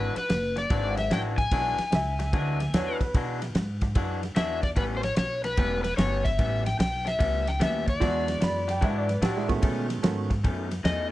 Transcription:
Already playing: G#1 E3 G#3 D4 F#4 B4
0.16 B4, muted upright bass stroke, muted clean electric guitar stroke, snare, ride
0.29 F#1, muted clean electric guitar stroke, snare, ride
0.56 D5, muted clean electric guitar stroke, snare, ride
0.70 G#1 E3 G#3 D4 F#4, kick, snare, ride
0.97 E5, muted clean electric guitar stroke, snare, ride
1.11 A1 E3 G#3 D4 F#4 G5, snare, ride
1.38 G#5, muted clean electric guitar stroke, kick, snare, ride
1.51 B1 E3 G#3 D4 F#4, kick, snare, ride
1.78 muted upright bass stroke, muted clean electric guitar stroke, snare, ride
1.91 C#2 D#5, muted clean electric guitar stroke, snare, ride
1.95 E5
2.19 muted clean electric guitar stroke, snare, ride
2.33 D2 E3 G#3 D4 F#4, kick, snare, ride
2.60 muted clean electric guitar stroke, snare, ride
2.73 E2 E3 G#3 D4 F#4 C#5, snare, ride
2.89 B4
3.01 B4, muted clean electric guitar stroke, kick, snare, ride
3.14 B2 E3 G#3 D4 F#4, kick, snare, ride
3.42 muted clean electric guitar stroke, snare, ride
3.55 G#2, muted clean electric guitar stroke, snare, ride
3.81 muted clean electric guitar stroke, kick, snare, ride
3.95 F#2 E3 G#3 D4 F#4, kick, snare, ride
4.22 muted clean electric guitar stroke, snare, ride
4.36 E2 E3 G#3 D4 F#4 E5, snare, ride
4.63 D5, muted clean electric guitar stroke, kick, snare, ride
4.76 A1 A2 G3 B3 C#4 B4, kick, snare, ride
4.97 C5
5.03 C#5, muted clean electric guitar stroke, snare, ride
5.16 B1 C#5, muted clean electric guitar stroke, snare, ride
5.44 B4, muted clean electric guitar stroke, snare, ride
5.57 E1 A2 G3 B3 C#4, kick, snare, ride
5.84 B4, muted clean electric guitar stroke, snare, ride
5.97 G1 A2 G3 B3 C#4 C#5, snare, ride
6.25 E5, muted clean electric guitar stroke, kick, snare, ride
6.39 A1 A2 G3 B3 C#4, kick, snare, ride
6.65 G5, muted clean electric guitar stroke, snare, ride
6.79 B1 G5, muted clean electric guitar stroke, snare, ride
7.05 E5, muted clean electric guitar stroke, snare, ride
7.19 C#2 A2 G3 B3 C#4, kick, snare, ride
7.46 G5, muted clean electric guitar stroke, snare, ride
7.60 D#2 A2 G3 B3 C#4 E5, snare, ride
7.86 D5, muted clean electric guitar stroke, kick, snare, ride
8.00 E2 E3 G#3 B3 D4 F#4, kick, snare, ride
8.28 muted clean electric guitar stroke, snare, ride
8.41 F#2 B5, muted clean electric guitar stroke, snare, ride
8.68 G5, muted clean electric guitar stroke, snare, ride
8.81 G#2 E3 G#3 D4 F#4 E5, kick, snare, ride
8.98 D5
9.08 B4, muted clean electric guitar stroke, snare, ride
9.22 A2 E3 G#3 D4 F#4 G4, snare, ride
9.37 G#3 E4
9.48 D#3 A3 B3 C#4 F#4, muted clean electric guitar stroke, kick, snare, ride
9.62 B2 D#3 A3 C#4, kick, snare, ride
9.89 muted clean electric guitar stroke, snare, ride
10.03 G#2 D#3 A3 B3 C#4 F#4, muted clean electric guitar stroke, snare, ride
10.30 muted clean electric guitar stroke, kick, snare, ride
10.44 F#2 B2 D#3 A3 C#4, kick, snare, ride
10.70 muted clean electric guitar stroke, snare, ride
10.84 E2 B2 D#3 A3 C#4 D#5, snare, ride

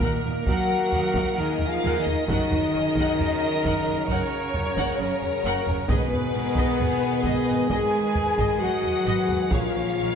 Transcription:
Already playing: A#2 D#3 A#3 A#4
0.00 D#2 A#4 F#5, taiko
0.25 D#2 D#4 A#4
0.46 D#2 F#3 F#4 A#4 F#5, taiko
0.92 D#2 F#4 D#5, taiko low
1.14 D#2 A#4 F#5, taiko
1.37 D#2 D#3 D#4 G#4 A#4 D#5
1.60 taiko low
1.68 F3 F4 F5
1.84 D#2 A#4 F#5
1.98 D#3 D#4 D#5
2.06 D#2 D#4 A#4, taiko low
2.28 F#1 C#3 D#3 F#3 D#4 F#4 A#4 D#5 F#5, taiko
2.51 F#1 C#4 A#4, taiko low
2.75 F#1 F#4 G#4 C#5
2.96 F#1 A#4 F#5, taiko
3.19 F#1 C#4 A#4, taiko low
3.64 F#1 A#4 F#5, taiko
3.87 F#1 C#4 A#4
4.09 F#1 C#3 C#4 A#4 C#5 F#5, taiko
4.54 F#1 F#4 C#5, taiko low
4.76 F#1 A#4 F#5, taiko
4.99 F#1 C#4 A#4
5.22 taiko low
5.44 F#1 A#4 F#5
5.67 F#1 C#4 A#4, taiko low
5.87 G#1 B2 D#3 G#3 B3 G#4 B4 D#5, taiko
6.12 G#1 B3 G#4, taiko low
6.34 G#1 D#4 A#4 B4
6.56 G#1 G#4 D#5, taiko
6.79 G#1 B3 G#4, taiko low
7.24 G#1 G#4 D#5, taiko
7.48 G#1 B3 G#4
7.69 G#1 G#3 G#4 B4 D#5 G#5, taiko
8.15 G#1 D#4 B4, taiko low
8.38 G#1 G#4 D#5, taiko
8.60 G#1 F#3 B3 F#4 G#4 D#5 F#5
8.83 taiko low
9.06 G#1 G#4 B4 D#5
9.28 G#1 B3 G#4, taiko low
9.51 A#1 A#2 F3 F4 G#4 A#4 C#5 F5, taiko
9.74 A#1 C#4 G#4
9.97 A#1 F4 A#4

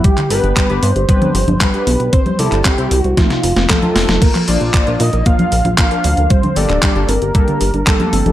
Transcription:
0.04 G3 G4, kick, closed hi-hat
0.17 D3, clap, closed hi-hat
0.30 G1 B3 D4 G4 B4, open hi-hat
0.44 G1 D4, closed hi-hat
0.57 G3, kick, clap, closed hi-hat
0.70 G1 B3 D4 G4 B4, closed hi-hat
0.83 G2 B3 C5, open hi-hat
0.96 G1 G4, closed hi-hat
1.09 G3 B3 D4 G4 B4, kick, closed hi-hat
1.22 D3, closed hi-hat, high conga
1.35 G1 G4, open hi-hat
1.48 G1 D4, closed hi-hat, high conga
1.61 G3 B3 D4 G4 B4, kick, clap, closed hi-hat
1.74 B3 D4 G4 B4, closed hi-hat
1.87 B1 B3, open hi-hat
2.00 B1 G4, closed hi-hat
2.13 C4 C5, kick, closed hi-hat
2.26 G3, closed hi-hat, high conga
2.39 C2 G3 C4 E4 G4 A4 C5, open hi-hat
2.52 G1 G4, clap, closed hi-hat
2.65 C4 G4, kick, clap, closed hi-hat
2.78 C2 G3 C4 E4 G4 C5, closed hi-hat
2.91 C2 F#4, open hi-hat
3.01 C2 F#4 C5, closed hi-hat
3.17 F3 A3 C4 D#4 F4, kick, snare, closed hi-hat
3.30 C3, snare, closed hi-hat
3.43 F1 F4, open hi-hat
3.56 F1 C4, snare, closed hi-hat
3.69 F3 A3 C4 D#4 F4 A4, kick, snare, clap, closed hi-hat
3.82 A3 C4 D#4 F4, closed hi-hat, high conga
3.96 F1 A3, snare, open hi-hat
4.09 F1 F4, snare, closed hi-hat, high conga
4.22 A#3 A#4, kick, closed hi-hat, crash
4.35 F3, clap, closed hi-hat
4.48 A#1 F3 A#3 D4 F4 A#4 D5, open hi-hat
4.61 A#1 F4, closed hi-hat
4.74 A#3, kick, clap, closed hi-hat
4.87 A#1 F3 A#3 D4 F4 A#4, closed hi-hat
5.00 A#2 D4 D#5, open hi-hat
5.13 A#1 A#4, closed hi-hat
5.26 F3 A#3 D4 F4 F5, kick, closed hi-hat
5.39 F3, closed hi-hat, high conga
5.52 A#1 A#4, open hi-hat
5.65 A#1 F4, closed hi-hat, high conga
5.78 F3 A#3 D4 F4 F5, kick, clap, closed hi-hat
5.91 F3 A#3 D4 F4 A#4, closed hi-hat
6.04 D2 D4, open hi-hat
6.17 D2 A#4, closed hi-hat
6.30 G3 C5, kick, closed hi-hat
6.43 D3, closed hi-hat, high conga
6.56 G1 A#3 D4 G4 A4 D5, open hi-hat
6.70 D1 D4, clap, closed hi-hat
6.82 G3, kick, clap, closed hi-hat
6.96 G1 A#3 D4 G4 A4, closed hi-hat
7.09 G1 C4 A#4, open hi-hat
7.22 G1 G4, closed hi-hat
7.35 G3 A#3 D4 G4 A4, kick, closed hi-hat
7.48 D3, closed hi-hat
7.61 G1 G4, open hi-hat
7.74 G1 D4, closed hi-hat
7.87 G3 A#3 D4 G4 A4, kick, clap, closed hi-hat
8.00 A#3 D4 G4 A4, closed hi-hat, high conga
8.13 G1 C4, open hi-hat
8.26 G1 G4, closed hi-hat, high conga

